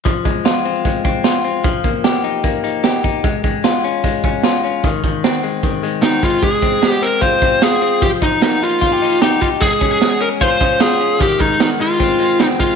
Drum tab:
HH |xxxxxxxx|xxxxxxxx|xxxxxxxx|xxxxxxxx|
SD |--o---o-|--o---o-|--o---o-|--o---o-|
BD |oo--oo--|oo--o--o|oo--oo--|oo--o--o|

HH |xxxxxxxx|xxxxxxxx|xxxxxxxx|xxxxxxxx|
SD |--o---o-|--o---o-|--o---o-|--o---o-|
BD |oo--oo--|oo--o--o|oo--oo--|oo--o--o|